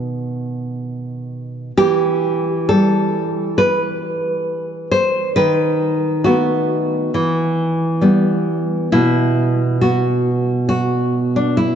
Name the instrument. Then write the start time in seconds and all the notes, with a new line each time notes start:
nylon-string guitar
Already playing: B2 D#3 B3 F#4
1.77 E3 G4
2.69 G3 A4
3.58 B4
4.91 C5
5.36 D#3 B4
6.24 A3 B3 F#4
7.14 E3
8.01 G3 B3
8.92 B2 E4
9.81 B3 F#4
10.69 F#4
11.36 D4
11.57 E4